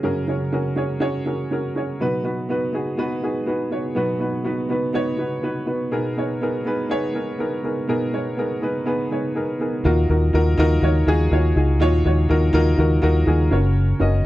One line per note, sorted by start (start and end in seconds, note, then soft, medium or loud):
0.00 0.04 F#2 soft
0.00 1.96 F#2 medium
0.00 0.04 C#3 medium
0.00 1.96 C#3 medium
0.00 0.03 C#4 medium
0.00 0.24 C#4 medium
0.00 0.03 F#4 medium
0.00 0.24 F#4 medium
0.00 0.04 G#4 medium
0.00 0.25 G#4 medium
0.00 0.05 A#4 loud
0.00 0.29 C#5 medium
0.05 0.25 A#4 medium
0.27 0.49 C#4 medium
0.27 0.49 F#4 medium
0.27 0.49 G#4 medium
0.27 0.50 C#5 medium
0.52 0.73 C#4 medium
0.52 0.74 F#4 medium
0.52 0.74 G#4 medium
0.52 0.74 A#4 medium
0.76 0.98 C#4 medium
0.76 0.98 F#4 medium
0.76 0.98 G#4 medium
0.76 0.98 C#5 medium
1.00 1.22 C#4 medium
1.00 1.22 F#4 medium
1.00 1.22 G#4 medium
1.00 1.23 C#5 loud
1.25 1.47 C#4 medium
1.25 1.47 F#4 medium
1.25 1.47 G#4 medium
1.25 1.48 A#4 medium
1.51 1.72 C#4 medium
1.51 1.72 F#4 medium
1.51 1.72 G#4 medium
1.51 1.73 A#4 medium
1.75 1.96 C#4 medium
1.75 1.97 F#4 medium
1.75 1.97 G#4 medium
1.75 1.97 C#5 medium
2.00 3.93 B2 soft
2.00 3.93 F#3 medium
2.00 2.21 B3 medium
2.00 2.21 D#4 medium
2.00 2.21 F#4 medium
2.00 2.22 B4 medium
2.23 2.45 B3 medium
2.23 2.45 D#4 medium
2.23 2.45 F#4 medium
2.23 2.46 B4 medium
2.49 2.70 B3 medium
2.49 2.70 D#4 medium
2.49 2.70 F#4 medium
2.49 2.71 B4 medium
2.73 2.94 B3 medium
2.73 2.94 D#4 medium
2.73 2.95 F#4 medium
2.73 2.95 G#4 medium
2.97 3.19 B3 medium
2.97 3.19 D#4 medium
2.97 3.19 F#4 medium
2.97 3.19 B4 loud
3.22 3.44 B3 medium
3.22 3.44 D#4 medium
3.22 3.44 F#4 medium
3.22 3.44 G#4 medium
3.46 3.68 B3 medium
3.46 3.68 D#4 medium
3.46 3.68 F#4 medium
3.46 3.68 B4 medium
3.70 3.92 B3 medium
3.70 3.92 D#4 medium
3.70 3.93 F#4 medium
3.70 3.93 C#5 medium
3.95 5.88 B2 medium
3.95 5.88 F#3 medium
3.95 4.17 B3 medium
3.95 4.17 D#4 medium
3.95 4.17 F#4 medium
3.95 4.17 B4 medium
4.19 4.41 B3 medium
4.19 4.41 D#4 medium
4.19 4.42 F#4 medium
4.19 4.42 B4 medium
4.44 4.66 B3 medium
4.44 4.66 D#4 medium
4.44 4.66 F#4 medium
4.44 4.67 B4 medium
4.69 4.90 B3 medium
4.69 4.91 D#4 medium
4.69 4.91 F#4 medium
4.69 4.92 B4 medium
4.93 5.15 B3 medium
4.93 5.15 D#4 medium
4.93 5.15 F#4 medium
4.93 5.16 C#5 loud
5.17 5.39 B3 medium
5.17 5.40 D#4 medium
5.17 5.40 F#4 medium
5.17 5.40 B4 medium
5.42 5.64 B3 medium
5.42 5.64 D#4 medium
5.42 5.64 F#4 medium
5.42 5.65 B4 medium
5.66 5.88 B3 medium
5.66 5.88 D#4 medium
5.66 5.88 F#4 medium
5.66 5.89 B4 medium
5.91 7.85 B2 medium
5.91 6.13 B3 medium
5.91 6.13 D#4 medium
5.91 6.13 G#4 medium
5.91 6.14 A#4 medium
6.17 6.38 B3 medium
6.17 6.38 D#4 medium
6.17 6.39 G#4 medium
6.17 6.39 C#5 medium
6.41 6.63 B3 medium
6.41 6.63 D#4 medium
6.41 6.63 G#4 medium
6.41 6.63 A#4 medium
6.65 6.87 B3 medium
6.65 6.87 D#4 medium
6.65 6.87 G#4 medium
6.65 6.88 B4 medium
6.89 7.11 B3 medium
6.89 7.11 D#4 medium
6.89 7.12 G#4 medium
6.89 7.12 C#5 loud
7.14 7.36 B3 medium
7.14 7.36 D#4 medium
7.14 7.36 G#4 medium
7.14 7.36 A#4 medium
7.38 7.60 B3 medium
7.38 7.61 D#4 medium
7.38 7.61 G#4 medium
7.38 7.61 A#4 medium
7.63 7.85 B3 medium
7.63 7.85 D#4 medium
7.63 7.85 G#4 medium
7.63 7.86 A#4 medium
7.88 9.81 B2 medium
7.88 8.09 B3 medium
7.88 8.10 D#4 medium
7.88 8.10 G#4 medium
7.88 8.10 A#4 loud
8.12 8.34 B3 medium
8.12 8.34 D#4 medium
8.12 8.35 G#4 medium
8.12 8.35 C#5 medium
8.37 8.59 B3 medium
8.37 8.59 D#4 medium
8.37 8.59 G#4 medium
8.37 8.60 A#4 medium
8.61 8.83 B3 medium
8.61 8.83 D#4 medium
8.61 8.84 G#4 medium
8.61 8.84 B4 medium
8.86 9.07 B3 medium
8.86 9.08 D#4 medium
8.86 9.08 G#4 medium
8.86 9.08 B4 medium
9.10 9.32 B3 medium
9.10 9.32 D#4 medium
9.10 9.33 G#4 medium
9.10 9.33 C#5 medium
9.34 9.56 B3 medium
9.34 9.57 D#4 medium
9.34 9.57 G#4 medium
9.34 9.57 A#4 medium
9.59 9.81 B3 medium
9.59 9.82 D#4 medium
9.59 9.82 G#4 medium
9.59 9.82 A#4 medium
9.84 10.05 D#2 loud
9.84 10.55 A#2 medium
9.84 10.06 D#4 medium
9.84 10.06 F4 loud
9.84 10.06 F#4 medium
9.84 10.07 A#4 loud
10.09 10.30 D#2 medium
10.09 10.30 D#4 medium
10.09 10.31 F4 medium
10.09 10.31 F#4 medium
10.09 10.31 A#4 medium
10.33 10.54 D#2 medium
10.33 10.55 D#4 medium
10.33 10.55 F4 medium
10.33 10.55 F#4 medium
10.33 10.56 A#4 loud
10.57 10.79 D#2 loud
10.57 10.79 D#4 loud
10.57 10.80 F4 loud
10.57 10.80 F#4 loud
10.57 10.80 A#4 loud
10.82 11.03 D#2 medium
10.82 11.04 D#4 medium
10.82 11.04 F4 medium
10.82 11.04 F#4 medium
10.82 11.05 C#5 medium
11.07 11.27 D#2 medium
11.07 11.28 D#4 loud
11.07 11.29 F4 medium
11.07 11.29 F#4 loud
11.07 11.29 G#4 loud
11.31 11.52 D#2 medium
11.31 11.53 D#4 medium
11.31 11.53 F4 medium
11.31 11.53 F#4 medium
11.31 11.54 C#5 medium
11.55 11.81 C#2 medium
11.55 11.77 D#4 medium
11.55 11.78 F4 medium
11.55 11.78 F#4 medium
11.55 11.78 G#4 medium
11.80 12.01 D#2 loud
11.80 12.50 A#2 medium
11.80 12.01 D#4 loud
11.80 12.02 F4 loud
11.80 12.02 F#4 medium
11.80 12.02 C#5 loud
12.05 12.26 D#2 loud
12.05 12.26 D#4 medium
12.05 12.27 F4 medium
12.05 12.27 F#4 medium
12.05 12.27 C#5 medium
12.29 12.50 D#2 loud
12.29 12.51 D#4 loud
12.29 12.51 F4 medium
12.29 12.51 F#4 medium
12.29 12.51 A#4 loud
12.53 12.74 D#2 loud
12.53 12.75 D#4 loud
12.53 12.75 F4 loud
12.53 12.75 F#4 loud
12.53 12.76 A#4 loud
12.78 12.99 D#2 loud
12.78 12.99 D#4 medium
12.78 13.00 F4 medium
12.78 13.00 F#4 medium
12.78 13.00 A#4 loud
13.02 13.23 D#2 medium
13.02 13.24 D#4 loud
13.02 13.24 F4 loud
13.02 13.24 F#4 medium
13.02 13.24 A#4 loud
13.26 13.48 D#2 loud
13.26 13.48 D#4 medium
13.26 13.48 F4 medium
13.26 13.48 F#4 medium
13.26 13.49 G#4 medium
13.51 13.92 F#1 loud
13.51 14.21 C#3 medium
13.51 13.94 C#4 medium
13.51 13.94 F#4 medium
13.51 13.94 A#4 medium
13.51 13.95 C#5 medium
13.99 14.21 F#1 medium
13.99 14.22 C#4 medium
13.99 14.22 F#4 medium
13.99 14.22 A#4 medium
13.99 14.22 D#5 medium